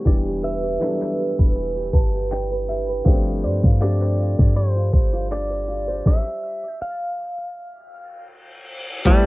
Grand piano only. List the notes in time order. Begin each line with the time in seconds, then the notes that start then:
0.05 E3 G3 B3 D4 G4
0.80 E3 F#3 B3 D4 A4
0.87 G3
1.94 A5
2.31 G5
2.69 E5
3.05 F3 A3 B3 D4 G4
3.13 C4
3.80 F3 A3 C4 D4 G4
9.05 G3 A3 B3 C4 E4